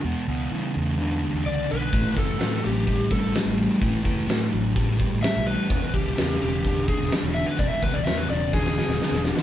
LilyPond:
<<
  \new Staff \with { instrumentName = "Electric slide guitar" } { \time 4/4 \key a \major \tempo 4 = 127 r2. d''8 b'8~ | b'8 a'4 g'4 a'8 r4 | r2. e''8 b'8~ | b'8 g'4 g'4 gis'8 r8 e''16 b'16 |
d''16 e''16 b'16 d''16 e''16 b'16 d''8 gis'2 | }
  \new Staff \with { instrumentName = "Distorted electric guitar" } { \clef bass \time 4/4 \key a \major <e, b,>8 <e, b,>8 <e, cis>8 <e, cis>8 <e, d>8 <e, d>8 <e, d>8 <e, d>8 | <a, e>8 <a, e>8 <a, fis>8 <a, fis>8 <a, g>8 <a, g>8 <a, g>8 <a, g>8 | <a, e>8 <a, e>8 <a, fis>8 <a, fis>8 <a, g>8 <a, g>8 <a, g>8 <a, g>8 | <e, b,>8 <e, b,>8 <e, cis>8 <e, cis>8 <e, d>8 <e, d>8 <e, d>8 <e, d>8 |
<e, b,>8 <e, b,>8 <e, cis>8 <e, cis>8 <e, d>8 <e, d>8 <e, d>8 <e, d>8 | }
  \new Staff \with { instrumentName = "Fingered electric bass" } { \clef bass \time 4/4 \key a \major e,16 r16 cis,8 e8 e,4~ e,16 e,16 cis,8 b,,8 | a,,16 r16 fis,,8 a,8 a,,4~ a,,16 a,,16 r16 a,,8 r16 | a,,16 r16 fis,,8 a,8 a,,4~ a,,16 a,,16 r16 b,,8 r16 | e,,16 r16 cis,8 e,8 e,,4~ e,,16 e,,16 r16 e,,8 r16 |
e,,16 r16 cis,8 e,8 e,,4~ e,,16 e,,16 r16 e,,8 r16 | }
  \new DrumStaff \with { instrumentName = "Drums" } \drummode { \time 4/4 r4 r4 r4 r4 | <hho bd>8 <hho bd sn>8 <hho sn>8 hho8 <hho bd>8 <hho bd>8 <hho sn>8 hho8 | <hho bd>8 <hho bd>8 <hho sn>8 hho8 <hho bd>8 <hho bd>8 <hho sn>8 hho8 | <hho bd>8 <hho bd>8 <hho sn>8 hho8 <hho bd>8 <hho bd>16 sn16 <hho sn>8 hho8 |
<hho bd>8 <hho bd sn>8 <hho sn>8 hho8 <bd sn>16 sn16 sn16 sn16 sn16 sn16 sn16 sn16 | }
>>